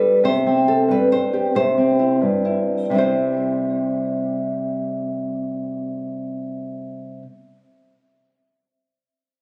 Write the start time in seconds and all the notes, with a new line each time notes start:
Already playing: G2 G3 A4 B4
0.24 C3 C5
0.47 C4
0.68 A4
0.88 G2 B4
1.12 C5
1.33 G4
1.55 C3 C5
1.78 C4
1.99 E4
2.21 G2
2.45 E4
2.90 C3 G3
2.94 C4 E4
2.98 C5